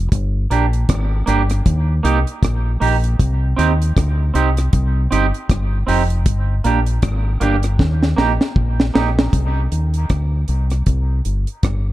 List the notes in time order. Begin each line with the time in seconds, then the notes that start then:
0.12 G1, kick, closed hi-hat
0.50 A#1 A#3 D4 G4, closed hi-hat
0.73 closed hi-hat
0.89 G#1, kick, cross-stick, closed hi-hat
1.26 G1 A#3 D4 G4, cross-stick, closed hi-hat
1.50 cross-stick, closed hi-hat
1.66 D#2, kick, closed hi-hat
2.03 C2 A#3 D#4 G4, closed hi-hat
2.27 closed hi-hat
2.43 A#1, kick, cross-stick, closed hi-hat
2.80 A#1 A#3 D#4 G4, open hi-hat
3.04 closed hi-hat
3.19 C2, kick, closed hi-hat
3.56 D#2 C4 D#4 G4, closed hi-hat
3.82 closed hi-hat
3.97 D2, kick, cross-stick, closed hi-hat
4.34 C2 C4 D#4 G4, closed hi-hat
4.57 cross-stick, closed hi-hat
4.73 C2, kick, closed hi-hat
5.11 G1 C4 D#4 G4, closed hi-hat
5.34 closed hi-hat
5.50 G1, kick, cross-stick, closed hi-hat
5.87 F1 C4 D#4 G4, open hi-hat
6.10 closed hi-hat
6.26 G1, kick, closed hi-hat
6.64 A#1 A#3 D4 G4, closed hi-hat
6.86 closed hi-hat
7.02 G#1, kick, cross-stick, closed hi-hat
7.40 G1 A#3 D4 G4, cross-stick, closed hi-hat
7.63 cross-stick, closed hi-hat
7.79 D#2, kick, snare
8.03 snare
8.16 A#1 A#3 D#4 G4, snare
8.41 snare
8.56 A#1, kick
8.80 snare
8.94 A#1 A#3 D#4 G4, snare
9.19 snare
9.33 C2, kick, closed hi-hat
9.72 D#2, closed hi-hat
9.94 closed hi-hat
10.10 D2, kick, cross-stick, closed hi-hat
10.48 C2, closed hi-hat
10.70 cross-stick, closed hi-hat
10.86 C2, kick, closed hi-hat
11.25 G1, closed hi-hat
11.47 closed hi-hat
11.63 G1, kick, cross-stick, closed hi-hat